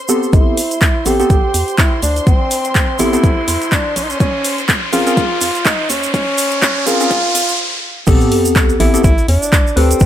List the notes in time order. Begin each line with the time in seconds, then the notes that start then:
Already playing: C5 C6
0.09 B3 C4 G4 A4, shaker
0.23 shaker
0.33 A1 E4 C5 C6, kick, closed hi-hat, riser, shaker
0.57 open hi-hat, shaker
0.71 closed hi-hat, shaker
0.81 kick, clap, closed hi-hat, shaker
1.05 A1 B3 C4 G4 A4, open hi-hat, shaker
1.19 B3 C4 G4 A4, closed hi-hat, shaker
1.30 A1, kick, closed hi-hat, shaker
1.54 E2, open hi-hat, shaker
1.68 closed hi-hat, shaker
1.78 E4, kick, clap, closed hi-hat, shaker
2.03 D2 D4, open hi-hat, shaker
2.16 closed hi-hat, shaker
2.27 A1 C4, kick, closed hi-hat, shaker
2.51 open hi-hat, shaker
2.65 closed hi-hat, shaker
2.75 kick, clap, closed hi-hat, shaker
2.99 A1 B3 C4 E4 G4 A4, open hi-hat, shaker
3.13 B3 C4 G4 A4, closed hi-hat, shaker
3.24 A1, kick, closed hi-hat, shaker
3.48 E2, open hi-hat, shaker
3.62 closed hi-hat, shaker
3.72 D4, kick, clap, closed hi-hat, shaker
3.96 A#1 C#4, open hi-hat, shaker
4.03 D#4
4.10 C#4, closed hi-hat, shaker
4.20 A#1 C#4, kick, closed hi-hat, shaker
4.44 open hi-hat, shaker
4.58 closed hi-hat, shaker
4.69 kick, clap, closed hi-hat, shaker
4.93 A#1 C4 C#4 F4 G#4 A#4, open hi-hat, shaker
5.06 C4 C#4 G#4 A#4, closed hi-hat, shaker
5.17 A#1, kick, closed hi-hat, shaker
5.41 F2, open hi-hat, shaker
5.55 closed hi-hat, shaker
5.65 D#4, kick, clap, closed hi-hat, shaker
5.90 D#2 C#4, open hi-hat, shaker
6.03 closed hi-hat, shaker
6.14 A#1 C#4, kick, closed hi-hat, shaker
6.38 open hi-hat, shaker
6.51 closed hi-hat, shaker
6.62 kick, clap, closed hi-hat, shaker
6.86 A#1 C4 C#4 F4 G#4 A#4, open hi-hat, shaker
7.00 C4 C#4 G#4 A#4, closed hi-hat, shaker
7.11 A#1, kick, closed hi-hat, shaker
7.35 F2, open hi-hat, shaker
7.49 closed hi-hat, shaker
8.07 A1 B3 C4 G4 A4, kick, closed hi-hat, crash, sub drop, shaker
8.21 shaker
8.32 open hi-hat
8.45 closed hi-hat, shaker
8.56 kick, clap, closed hi-hat, shaker
8.69 closed hi-hat, shaker
8.80 A1 B3 C4 E4 G4 A4, open hi-hat
8.93 B3 C4 G4 A4, closed hi-hat, shaker
9.04 A1 E4, kick, closed hi-hat, shaker
9.18 closed hi-hat, shaker
9.28 E2 D4, open hi-hat
9.42 closed hi-hat, shaker
9.53 kick, clap, closed hi-hat, shaker
9.67 shaker
9.76 D2 C4 G4 A4 B4, open hi-hat
9.91 closed hi-hat, shaker
10.00 A1, kick, closed hi-hat, shaker